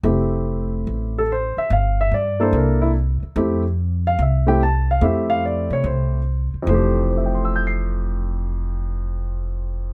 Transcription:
0.03 upright bass F1, grand piano A3 C4 E4 G4
0.87 upright bass A1
1.18 grand piano A4
1.32 grand piano C5
1.57 grand piano E5, muted upright bass stroke
1.70 upright bass G1, grand piano F5
2.01 grand piano E5
2.11 upright bass G2, grand piano D5
2.40 grand piano A#3 D4 E4 A4 C5
2.53 upright bass C2, grand piano A#4
2.82 grand piano E4
3.23 muted upright bass stroke
3.36 upright bass F2, grand piano A3 C4 E4 G4
4.07 grand piano F5
4.19 upright bass C2, grand piano E5
4.47 grand piano A3 C4 E4 G4 G5
4.63 grand piano A5
4.91 grand piano F5
5.01 upright bass F2, grand piano A3 C4 E4 G4 E5
5.30 grand piano F5
5.46 grand piano D5
5.70 upright bass C3, grand piano C#5
5.84 upright bass C2, grand piano C5
6.54 muted upright bass stroke
6.62 grand piano F2 E3
6.67 upright bass F1, grand piano A3 C5
6.74 grand piano G4
7.10 grand piano C5
7.17 grand piano E5
7.26 grand piano G5
7.35 grand piano C6
7.45 grand piano E6
7.56 grand piano G6
7.67 grand piano C7

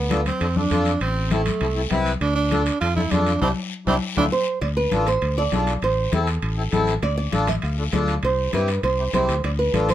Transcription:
Already playing: fingered electric bass D2, tenor saxophone B3
0.10 accordion D4 F4 A4, high conga, high timbale, short guiro
0.26 tenor saxophone C4, high conga, high timbale, short guiro
0.40 fingered electric bass F2, accordion D4 F4 A4, high conga, high timbale, long guiro
0.56 accordion D4 F4 A4, tenor saxophone D4, high conga
0.70 fingered electric bass F2, accordion D4 F4 A4, high conga, high timbale, short guiro
0.85 high timbale, short guiro
1.00 fingered electric bass A1, tenor saxophone C4, high conga, high timbale, long guiro
1.31 tenor saxophone A3, accordion C4 E4 A4, high conga, high timbale, short guiro
1.46 high conga, high timbale, short guiro
1.60 fingered electric bass C2, accordion C4 E4 A4, high conga, high timbale, long guiro
1.75 accordion C4 E4 A4
1.90 fingered electric bass C2, accordion C4 E4 B4, high conga, high timbale, low timbale, short guiro
2.06 high timbale, short guiro
2.21 fingered electric bass D2, tenor saxophone D4, high timbale, long guiro
2.36 tenor saxophone D4
2.51 accordion D4 F4 A4, high conga, high timbale, short guiro
2.66 high timbale, short guiro
2.81 fingered electric bass F2, accordion D4 F4 A4, tenor saxophone F4, high conga, high timbale, long guiro
2.96 accordion D4 F4 A4, tenor saxophone E4, high conga
3.11 fingered electric bass F2, tenor saxophone D4, accordion D4 F4 A4, high conga, high timbale, low timbale, short guiro
3.26 high timbale, short guiro
3.41 fingered electric bass C2, tenor saxophone C4, accordion D4 E4 G4, high conga, high timbale, long guiro
3.87 fingered electric bass C2, tenor saxophone C4, accordion D4 E4 G4, high conga, high timbale, long guiro
4.17 fingered electric bass D2, tenor saxophone D4, accordion E4 F4 A4, high conga, high timbale, long guiro
4.32 nylon-string guitar C5
4.61 fingered electric bass D2, nylon-string guitar D5, high conga, high timbale, long guiro
4.77 nylon-string guitar B4
4.91 fingered electric bass A1, accordion D4 F4 A4, high conga, high timbale, short guiro
5.07 nylon-string guitar C5, high timbale, short guiro
5.22 fingered electric bass D2, high conga, high timbale, long guiro
5.37 accordion D4 F4 A4, nylon-string guitar D5
5.52 fingered electric bass B1, accordion D4 F4 A4, high conga, high timbale, low timbale, short guiro
5.67 high timbale, short guiro
5.82 fingered electric bass A1, nylon-string guitar C5, high conga, high timbale, long guiro
6.12 fingered electric bass E2, accordion C4 E4 A4, nylon-string guitar A4, high conga, high timbale, short guiro
6.27 high timbale, short guiro
6.42 fingered electric bass A1, high conga, high timbale, long guiro
6.57 accordion C4 E4 A4
6.72 fingered electric bass A1, accordion C4 E4 A4, high conga, high timbale, low timbale, short guiro
6.87 high timbale, short guiro
7.02 fingered electric bass D2, nylon-string guitar D5, high conga, high timbale, long guiro
7.17 nylon-string guitar D5
7.32 fingered electric bass A1, accordion D4 F4 A4, high conga, high timbale, short guiro
7.47 nylon-string guitar E5, high conga, high timbale, short guiro
7.62 fingered electric bass D2, nylon-string guitar F5, high conga, high timbale, long guiro
7.78 accordion D4 F4 A4
7.92 fingered electric bass D2, accordion D4 F4 A4, nylon-string guitar D5, high conga, high timbale, low timbale, short guiro
8.07 high timbale, short guiro
8.23 fingered electric bass C2, nylon-string guitar C5, high conga, high timbale, long guiro
8.53 fingered electric bass G2, accordion C4 E4 G4, nylon-string guitar B4, high conga, high timbale, short guiro
8.68 high timbale, short guiro
8.83 fingered electric bass C2, nylon-string guitar C5, high conga, high timbale, long guiro
8.98 accordion C4 E4 G4
9.13 fingered electric bass C2, accordion C4 E4 G4, nylon-string guitar C5, high conga, high timbale, low timbale, short guiro
9.29 fingered electric bass D2, high timbale, short guiro
9.44 fingered electric bass D2, nylon-string guitar D5, high conga, high timbale, long guiro
9.59 nylon-string guitar B4
9.73 fingered electric bass A1, accordion D4 F4 A4, high conga, high timbale, short guiro
9.89 nylon-string guitar C5, high conga, high timbale, short guiro

